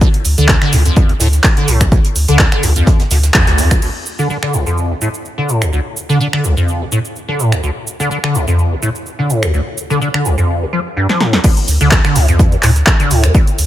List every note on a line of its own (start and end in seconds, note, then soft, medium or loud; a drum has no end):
0.01 0.08 D2 medium
0.01 kick loud
0.01 closed hi-hat medium
0.01 cabasa soft
0.14 closed hi-hat medium
0.25 0.35 D2 loud
0.25 closed hi-hat medium
0.25 open hi-hat loud
0.25 cabasa medium
0.38 0.57 D2 medium
0.38 0.47 D3 loud
0.38 closed hi-hat medium
0.38 cabasa medium
0.48 0.56 D3 medium
0.48 kick loud
0.48 snare loud
0.48 clap loud
0.48 closed hi-hat medium
0.48 cabasa soft
0.62 0.74 D3 medium
0.62 finger snap medium
0.62 snare medium
0.73 0.83 C2 loud
0.73 0.92 D2 medium
0.73 snare soft
0.73 closed hi-hat medium
0.73 open hi-hat medium
0.73 cabasa medium
0.85 1.11 F2 medium
0.85 closed hi-hat medium
0.85 cabasa soft
0.96 kick loud
0.96 closed hi-hat medium
0.96 cabasa soft
1.09 1.13 D2 loud
1.09 closed hi-hat soft
1.20 1.40 D2 loud
1.20 1.27 A2 medium
1.20 snare loud
1.20 closed hi-hat medium
1.20 open hi-hat loud
1.20 cabasa medium
1.32 snare medium
1.32 closed hi-hat medium
1.32 cabasa soft
1.44 kick loud
1.44 snare loud
1.44 clap loud
1.44 closed hi-hat medium
1.44 cabasa soft
1.57 1.70 D3 medium
1.57 closed hi-hat medium
1.68 1.87 C2 loud
1.68 1.82 A2 loud
1.68 closed hi-hat medium
1.68 open hi-hat medium
1.68 cabasa medium
1.81 1.90 D2 medium
1.81 finger snap medium
1.81 kick medium
1.81 closed hi-hat medium
1.81 cabasa soft
1.92 1.99 D2 medium
1.92 kick loud
1.92 closed hi-hat medium
1.92 cabasa soft
2.05 closed hi-hat medium
2.16 2.26 D2 loud
2.16 open hi-hat loud
2.16 cabasa medium
2.28 2.47 D2 medium
2.28 2.38 D3 loud
2.28 closed hi-hat medium
2.28 cabasa soft
2.39 2.47 D3 medium
2.39 kick loud
2.39 snare loud
2.39 clap loud
2.39 closed hi-hat loud
2.39 cabasa soft
2.52 2.65 D3 medium
2.52 finger snap medium
2.52 closed hi-hat soft
2.63 2.74 C2 loud
2.63 2.83 D2 medium
2.63 closed hi-hat medium
2.63 open hi-hat medium
2.63 cabasa medium
2.76 3.01 F2 medium
2.76 closed hi-hat medium
2.76 cabasa soft
2.86 kick loud
2.86 snare loud
2.86 closed hi-hat medium
2.86 cabasa soft
3.00 3.03 D2 loud
3.00 snare loud
3.00 closed hi-hat soft
3.00 closed hi-hat medium
3.11 3.30 D2 loud
3.11 3.18 D2 medium
3.11 snare loud
3.11 closed hi-hat medium
3.11 open hi-hat loud
3.11 cabasa medium
3.23 snare loud
3.23 closed hi-hat medium
3.23 cabasa soft
3.34 3.45 F2 medium
3.34 kick loud
3.34 snare loud
3.34 clap loud
3.34 closed hi-hat medium
3.34 cabasa soft
3.47 3.60 D2 medium
3.47 snare loud
3.47 closed hi-hat medium
3.58 3.78 D2 loud
3.58 3.73 F2 loud
3.58 closed hi-hat medium
3.58 open hi-hat medium
3.58 cabasa medium
3.71 3.80 C2 loud
3.71 finger snap medium
3.71 kick medium
3.71 closed hi-hat medium
3.71 cabasa soft
3.82 3.89 D2 medium
3.82 crash medium
3.82 cabasa soft
4.06 cabasa medium
4.19 4.28 D3 loud
4.19 cabasa soft
4.30 4.37 D3 medium
4.30 cabasa soft
4.43 4.55 D3 medium
4.43 finger snap medium
4.54 4.64 C2 loud
4.54 cabasa medium
4.66 4.92 F2 medium
4.66 cabasa soft
4.78 cabasa soft
4.90 4.94 D2 loud
5.01 5.08 A2 medium
5.01 cabasa medium
5.14 cabasa soft
5.25 cabasa soft
5.38 5.50 D3 medium
5.49 5.63 A2 medium
5.49 cabasa medium
5.62 5.71 D2 medium
5.62 finger snap medium
5.62 cabasa soft
5.73 5.80 D2 medium
5.73 cabasa soft
5.97 cabasa medium
6.09 6.18 D3 loud
6.09 cabasa soft
6.20 6.27 D3 medium
6.20 cabasa soft
6.33 6.46 D3 medium
6.33 finger snap medium
6.44 6.55 C2 medium
6.44 cabasa medium
6.57 6.82 F2 medium
6.57 cabasa soft
6.68 cabasa soft
6.81 6.84 D2 loud
6.92 6.99 A2 medium
6.92 cabasa medium
7.05 cabasa soft
7.16 cabasa soft
7.28 7.41 D3 medium
7.40 7.54 A2 loud
7.40 cabasa medium
7.52 7.61 D2 medium
7.52 finger snap medium
7.52 cabasa soft
7.63 7.70 D2 medium
7.63 cabasa soft
7.87 cabasa medium
8.00 8.09 D3 loud
8.00 cabasa soft
8.11 8.18 D3 medium
8.11 cabasa soft
8.24 8.36 D3 medium
8.24 finger snap medium
8.35 8.45 C2 medium
8.35 cabasa medium
8.48 8.73 F2 medium
8.48 cabasa soft
8.59 cabasa soft
8.71 8.75 D2 loud
8.82 8.89 A2 medium
8.82 cabasa medium
8.95 cabasa soft
9.06 cabasa soft
9.19 9.31 D3 medium
9.30 9.44 A2 loud
9.30 cabasa medium
9.43 9.52 D2 medium
9.43 finger snap medium
9.43 cabasa soft
9.54 9.61 D2 medium
9.54 cabasa soft
9.78 cabasa medium
9.90 9.99 D3 loud
9.90 cabasa soft
10.01 10.08 D3 medium
10.01 cabasa soft
10.14 10.27 D3 medium
10.14 finger snap medium
10.25 10.36 C2 loud
10.25 cabasa medium
10.38 10.63 F2 medium
10.38 cabasa soft
10.62 10.65 D2 loud
10.73 10.80 F3 medium
10.97 11.07 G2 medium
11.09 11.22 F3 medium
11.09 snare soft
11.20 11.35 A2 loud
11.20 snare medium
11.33 11.39 D2 medium
11.33 snare medium
11.44 11.51 D2 medium
11.44 kick loud
11.44 closed hi-hat medium
11.44 crash loud
11.44 cabasa soft
11.57 closed hi-hat medium
11.57 cabasa soft
11.68 11.78 D2 medium
11.68 closed hi-hat medium
11.68 open hi-hat loud
11.68 cabasa medium
11.81 11.99 D2 medium
11.81 11.90 D3 loud
11.81 closed hi-hat medium
11.81 cabasa soft
11.91 kick loud
11.91 snare loud
11.91 clap loud
11.91 closed hi-hat medium
11.91 cabasa soft
12.04 12.17 D3 medium
12.04 finger snap medium
12.04 snare medium
12.04 cabasa soft
12.16 12.26 C2 loud
12.16 12.35 D2 medium
12.16 snare medium
12.16 closed hi-hat medium
12.16 open hi-hat medium
12.16 cabasa medium
12.28 12.54 F2 medium
12.28 closed hi-hat medium
12.28 cabasa soft
12.39 kick loud
12.39 closed hi-hat medium
12.39 cabasa soft
12.52 12.56 D2 loud
12.52 closed hi-hat soft
12.52 cabasa soft
12.63 12.83 D2 loud
12.63 12.70 A2 medium
12.63 clap medium
12.63 closed hi-hat medium
12.63 open hi-hat loud
12.63 cabasa medium
12.76 snare soft
12.76 closed hi-hat medium
12.76 cabasa soft
12.86 kick loud
12.86 snare loud
12.86 clap loud
12.86 closed hi-hat medium
12.86 cabasa soft
13.00 13.12 D3 medium
13.00 closed hi-hat medium
13.00 cabasa soft
13.11 13.30 D2 loud
13.11 13.25 A2 loud
13.11 closed hi-hat medium
13.11 open hi-hat medium
13.11 cabasa medium
13.23 13.33 D2 medium
13.23 finger snap medium
13.23 snare medium
13.23 closed hi-hat medium
13.23 cabasa soft
13.35 13.42 D2 medium
13.35 kick loud
13.35 closed hi-hat medium
13.35 cabasa soft
13.47 closed hi-hat medium
13.47 cabasa soft
13.58 13.66 D2 loud
13.58 closed hi-hat medium
13.58 open hi-hat loud
13.58 cabasa medium